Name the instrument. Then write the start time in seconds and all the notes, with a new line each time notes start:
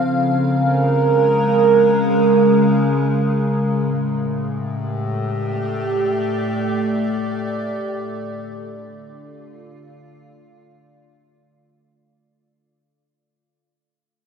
ambient pad
Already playing: C#3 C4 F5
0.07 G#3
0.12 A#4
3.73 A2
4.36 A3
4.55 G4
5.16 D5
8.00 D3
8.82 F4